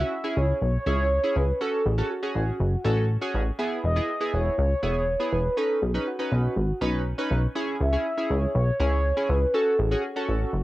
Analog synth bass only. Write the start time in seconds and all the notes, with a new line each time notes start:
0.37 C#2
0.61 B1
0.86 C#2
1.36 C#2
1.86 A1
2.35 A1
2.60 F#1
2.85 A1
3.34 A1
3.84 E1
4.33 E1
4.58 C#2
4.83 E1
5.33 E1
5.82 B1
6.32 B1
6.56 G#1
6.81 B1
7.31 B1
7.81 C#2
8.30 C#2
8.55 B1
8.80 C#2
9.29 C#2
9.79 A1
10.29 A1
10.53 F#1